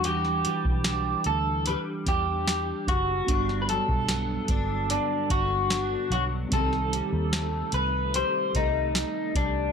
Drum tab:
HH |x-x-x-x-x-x-x-x-|x-x-x-x-x-x-x-x-|x-x-x-x-x-x-x-x-|
SD |-o--o-------o---|-o--o-------o---|-o--o-------o---|
BD |---o------o---o-|o--o--o---o-----|o---------o---o-|